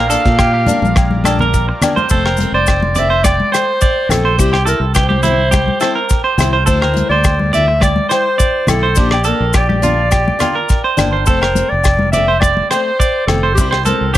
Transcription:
Already playing: A#1 F4 A#4 D5 F5
0.10 A#3 D4 A4, closed hi-hat, maracas
0.25 A#2, kick, maracas
0.39 G4, kick, cross-stick, low agogo, maracas
0.54 G4
0.67 A#3 D4, closed hi-hat, high conga, low conga, maracas
0.82 A#1, high conga, maracas
0.96 muted clean electric guitar stroke, kick, cross-stick, low agogo, maracas
1.11 high conga
1.24 A#3 D4 A4, cross-stick, closed hi-hat, high conga, low agogo, maracas
1.39 A#4, low conga, maracas
1.54 kick, maracas
1.69 muted clean electric guitar stroke
1.82 A#3 D4, cross-stick, closed hi-hat, low conga, low agogo, maracas
1.96 C5, high conga, maracas
2.09 F1 F3 A3 A4 C5, kick, maracas
2.14 C4
2.26 A#4, cross-stick, low agogo
2.37 C4, closed hi-hat, high conga, maracas
2.43 A3
2.52 F1 C5 D5
2.67 kick, cross-stick, low agogo, maracas
2.83 high conga
2.95 C4 D5, closed hi-hat, low conga, maracas
2.99 A3 E5
3.10 C5
3.24 D5, kick, cross-stick, high conga, low agogo, maracas
3.40 high conga
3.52 C5, muted steel-string acoustic guitar stroke, cross-stick, closed hi-hat, low agogo, maracas
3.58 A3
3.81 D5, kick, maracas
4.09 A#1 C4 A4, cross-stick, closed hi-hat, low conga, low agogo, maracas
4.14 A3
4.25 C5
4.38 C2 G3 C4 E4 G4, kick, maracas
4.53 G4, cross-stick, low agogo
4.66 E4 A4 A#4, closed hi-hat, maracas
4.70 muted steel-string acoustic guitar stroke
4.80 C2
4.95 G4 C5, kick, cross-stick, low agogo, maracas
5.09 G4, high conga
5.23 E4, closed hi-hat, low conga, maracas
5.27 C4
5.51 G4, kick, cross-stick, high conga, low agogo, maracas
5.68 high conga
5.80 C4 E4 A4, cross-stick, closed hi-hat, low agogo, maracas
5.95 A#4
6.09 kick, maracas
6.24 C5
6.38 C2 C4 E4, cross-stick, closed hi-hat, low conga, low agogo, maracas
6.53 C5
6.66 D2 F3 A3 E4 A4 C5, kick, maracas
6.82 A#4, cross-stick, low agogo
6.94 A3 E4, closed hi-hat, high conga
7.09 D2 C5 D5
7.24 kick, cross-stick, low agogo, maracas
7.39 high conga
7.53 E4 D5 E5, closed hi-hat, low conga, maracas
7.57 A3
7.68 muted clean electric guitar stroke
7.81 D5, kick, cross-stick, high conga, low agogo, maracas
7.96 high conga
8.09 E4 C5, cross-stick, closed hi-hat, low agogo, maracas
8.38 D5, kick, maracas
8.67 B1 A3 E4 A4, cross-stick, closed hi-hat, low conga, low agogo, maracas
8.83 C5
8.95 A#1 F3 A#3 D4 G4, kick, maracas
9.11 D5, cross-stick, low agogo
9.24 A#3 D4 A4 A#4, closed hi-hat, maracas
9.40 A#1
9.53 G4 D5, kick, cross-stick, low agogo, maracas
9.69 G4, high conga
9.82 A#3 D4 F4, closed hi-hat, low conga, maracas
10.11 G4, kick, cross-stick, low agogo, maracas
10.28 high conga
10.39 A#3 D4 F4, cross-stick, closed hi-hat, low conga, low agogo, maracas
10.55 A#4
10.69 kick, maracas
10.84 C5
10.97 G1 A#3 D4, cross-stick, closed hi-hat, low conga, low agogo, maracas
11.13 C5
11.26 F1 F3 A3 C4 A4 C5, kick, maracas
11.42 A#4, cross-stick, low agogo
11.55 A3 C4, closed hi-hat, high conga, maracas
11.69 F1 D5
11.84 kick, cross-stick, low agogo, maracas
11.99 high conga
12.12 C4 D5 E5, closed hi-hat, low conga, maracas
12.17 A3
12.28 C5
12.40 D5, kick, cross-stick, high conga, low agogo, maracas
12.57 high conga
12.70 A3 C4 C5, cross-stick, closed hi-hat, low agogo, maracas
13.00 D5, kick, maracas
13.27 F1 C4 A4, cross-stick, closed hi-hat, low conga, low agogo
13.31 A3
13.43 C5
13.55 C2 G3 C4 G4, kick, maracas
13.60 E4
13.71 C5, cross-stick, low agogo
13.85 C4 A4 A#4, muted steel-string acoustic guitar stroke, closed hi-hat, high conga, maracas
14.01 C2
14.14 G4, maracas

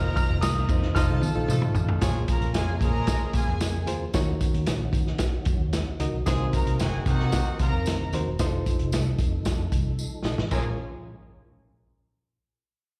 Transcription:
Already playing: F1 D#3 A#3 D#4 F4 A#4 C5 D#5 A#5 F6
0.16 F6, kick, ride, tambourine
0.30 F1
0.41 C2 D#6, snare, ride, tambourine
0.69 F2 D#4 F4 A#4 C5 D#5, kick, ride, tambourine
0.83 snare
0.94 F1 F3 A3 D#4 F4 A4 C5 D#5 A5 F6, kick, snare, tambourine
1.08 C2
1.22 high tom, tambourine
1.35 A#1 D#4 F4 A4 C5 F5
1.48 A1 F3 A3 D#4 A4, mid tom, tambourine
1.62 mid tom
1.75 A1, floor tom, tambourine
1.89 floor tom
2.00 A#1 A#2 C#3 F3 G#3 A#3 C#4 F4 G#4 A#4 C#5, kick, snare, closed hi-hat, tambourine
2.27 F3 A#3 C#4 A#4 A#5, kick, closed hi-hat, tambourine
2.41 A#1, closed hi-hat
2.54 F2 C#3 F3 A#3 F4 G#4 G#5, snare, closed hi-hat, tambourine
2.81 A#2 F3 G#3 C#4 G#4 A#4 A#5, kick, closed hi-hat, tambourine
3.07 kick, snare, closed hi-hat, tambourine
3.33 A#2 C#3 F3 A#3 F4 G#4 G#5, kick, closed hi-hat, tambourine
3.48 F2
3.61 snare, closed hi-hat, tambourine
3.87 D#2 F4 G#4 A#4 C5, closed hi-hat, tambourine
4.13 D#2 D#3 C#4 D#4 F#4 A#4 C#5, kick, snare, closed hi-hat, tambourine
4.41 kick, closed hi-hat, tambourine
4.54 D#2, closed hi-hat
4.67 A#1, snare, closed hi-hat, tambourine
4.93 D#3, kick, closed hi-hat, tambourine
5.07 snare
5.18 kick, snare, closed hi-hat, tambourine
5.45 F#2, kick, closed hi-hat, tambourine
5.60 D#2
5.73 snare, closed hi-hat, tambourine
6.00 C#2 D#4 F#4 A#4 D#5, closed hi-hat, tambourine
6.12 B1
6.26 C2 C3 G#3 C4 D#4 F4 F#4 G#4 A#4 C5, kick, snare, closed hi-hat, tambourine
6.53 F#3 A#3 D#4 A#4 A#5, kick, closed hi-hat, tambourine
6.66 C2, closed hi-hat
6.79 F#1 D#3 F#3 C4 F#4 G#4 G#5, snare, closed hi-hat, tambourine
7.06 C3 D#3 A#3 D#4 F#4 F#5, kick, closed hi-hat, tambourine
7.20 snare
7.32 kick, snare, closed hi-hat, tambourine
7.59 C3 F3 C#4 F4 A#4 A#5, kick, closed hi-hat, tambourine
7.73 F2
7.86 snare, closed hi-hat, tambourine
8.12 D#2 D#4 F#4 A#4 C5, closed hi-hat, tambourine
8.26 E1
8.39 F1 F3 D#4 F4 F#4 A4 C5, kick, snare, closed hi-hat, tambourine
8.47 A4
8.66 kick, closed hi-hat, tambourine
8.79 F1, closed hi-hat
8.92 C2, snare, closed hi-hat, tambourine
9.18 F2, kick, closed hi-hat, tambourine
9.45 F2, kick, snare, closed hi-hat, tambourine
9.72 C2, kick, closed hi-hat, tambourine
9.99 tambourine
10.24 A#1 D#4 F4 A4 D#5, snare, tambourine
10.37 A1, snare
10.51 A#1 F3 G#3 C#4 F4 G#4 A#4 C#5 G#5, kick, crash, tambourine

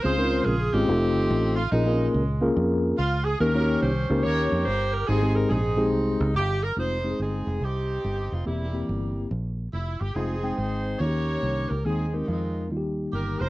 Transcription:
0.02 C#2 C#3 G#3 C4 C#4 F4 G#4 C5
0.17 G#3 C4 C#4 D#4 A#4
0.23 F4
0.44 A#1 G#4
0.73 G#1 G#3 C4 C#4 D#4 F4 G4 G#4
0.88 F1 A3 C4 D#4 F4 A4
1.16 G1
1.30 A1
1.56 F4
1.72 A#1 A#2 G#3 A#3 C#4 D#4 F4 G#4 A#4
1.86 A#3 C4 F4 G#4 A#4
1.91 C#4
2.14 C#2
2.41 A#3 C#4 F4 G#4 A#4
2.57 F2
2.98 C#2 F4
3.24 G#4
3.40 D#2 D#3 A#3 C#4 D#4 G4 A#4
3.54 A#3 C#4 D#4 F#4 C#5
3.60 G4
3.81 C2 G4 C5
4.10 C#2 A#3 C#4 D#4 G4 A#4
4.23 D#2 G4 A#4 C#5
4.52 F2
4.65 G1 C5
4.91 A#4
5.07 G#1 G#2 G#3 C4 D#4 G4 G#4
5.22 G#3 C4 D#4 G4 G#4
5.35 A#4
5.50 A#1 C4 D#4 G#4
5.77 G#3 C4 D#4 G4 G#4
5.93 C2
6.21 C#2
6.35 G1 G4
6.63 A#4
6.77 F1 G#3 C4 D#4 F4 G#4 C5
7.04 G#3 C4 D#4 G4
7.10 G#4
7.20 G1 C4 D#4 G#4
7.47 F1
7.61 C2 C4 D#4 G4
8.04 G1
8.32 F1 F4
8.45 E1 E3 G3 A#3 C4 E4 G4
8.73 A#3 C4 E4 G4
8.89 G1
9.31 A#1
9.73 F1 E4
10.01 G1 G4
10.15 F1 G#3 C4 D#4 F4 G#4
10.43 G#3 C4 D#4 G5
10.58 G#1 D#4 G#4 C5
10.99 D#2 D#3 A#3 C#4 D#4 F#4 G4 A#4 C#5
11.07 G4
11.43 C2
11.68 C#2 A#4
11.85 D#2 D#3 G#3 C4 D#4 G#4
12.13 G#3 B3 D#4 G4 A#4
12.18 C4
12.27 F2 G#3 C4 F4
12.70 D#2 D#3 G3 A#3 D#4 F4
12.77 G4
13.13 G1 G4 A#4
13.40 F1 A#4 C5

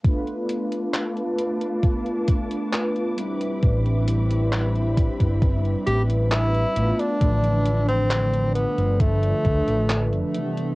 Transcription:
0.03 A3 B3 D4 F4 B4 F5 A5 D6, kick, closed hi-hat
0.27 closed hi-hat
0.49 closed hi-hat
0.72 closed hi-hat
0.94 clap, closed hi-hat
1.17 closed hi-hat
1.39 closed hi-hat
1.61 closed hi-hat
1.83 kick, closed hi-hat
2.06 closed hi-hat
2.28 kick, closed hi-hat
2.51 closed hi-hat
2.73 clap, closed hi-hat
2.96 closed hi-hat
3.16 G3 C4 D4 E4 B4 E5 B5, closed hi-hat
3.41 closed hi-hat
3.63 A1, kick, closed hi-hat
3.86 closed hi-hat
4.08 closed hi-hat
4.31 closed hi-hat
4.52 clap, closed hi-hat
4.75 closed hi-hat
4.97 kick, closed hi-hat
5.20 G1, kick, closed hi-hat
5.42 kick, closed hi-hat
5.65 closed hi-hat
5.87 A1 G4, closed hi-hat
6.10 closed hi-hat
6.31 E4, clap, closed hi-hat
6.54 closed hi-hat
6.76 A1 A3 B3 D4 F4 B4 F5 A5, closed hi-hat
6.99 D4, closed hi-hat
7.20 A1 D3 F3 A3 D4 B4, kick, closed hi-hat
7.44 closed hi-hat
7.66 closed hi-hat
7.89 C4, closed hi-hat
8.11 clap, closed hi-hat
8.34 closed hi-hat
8.55 B3, closed hi-hat
8.78 G1, closed hi-hat
9.00 A3, kick, closed hi-hat
9.23 closed hi-hat
9.45 D2, kick, closed hi-hat
9.68 A1, closed hi-hat
9.90 clap, closed hi-hat
10.13 closed hi-hat
10.34 C3 E3 G3 B3 D4, closed hi-hat
10.57 closed hi-hat

